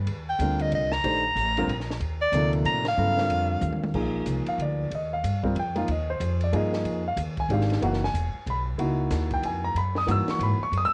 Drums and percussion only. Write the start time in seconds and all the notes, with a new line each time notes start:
0.07 ride
0.40 hi-hat pedal, ride
0.59 ride
0.72 ride
0.92 snare
1.04 ride
1.37 hi-hat pedal, ride
1.57 ride
1.69 ride
1.80 snare
1.91 snare
2.01 ride
2.33 hi-hat pedal, ride
2.53 ride
2.65 ride
2.85 snare, ride
3.18 snare
3.30 ride
3.61 hi-hat pedal, mid tom
3.73 high tom
3.84 high tom
3.94 kick, crash
4.26 hi-hat pedal, ride
4.46 ride
4.60 ride
4.92 ride
5.24 hi-hat pedal, ride
5.44 kick
5.56 ride
5.76 ride
5.88 ride
6.21 hi-hat pedal, ride
6.41 ride
6.53 ride
6.73 snare
6.85 ride
7.17 hi-hat pedal, ride
7.37 kick, ride
7.50 ride
7.61 snare
7.70 snare, ride
7.82 ride
7.93 snare
8.04 snare
8.15 hi-hat pedal, ride
8.47 ride
8.79 ride
9.11 snare, hi-hat pedal, ride
9.31 kick, ride
9.43 ride
9.76 ride
9.95 snare
10.08 hi-hat pedal, ride
10.28 snare, ride
10.41 ride
10.73 ride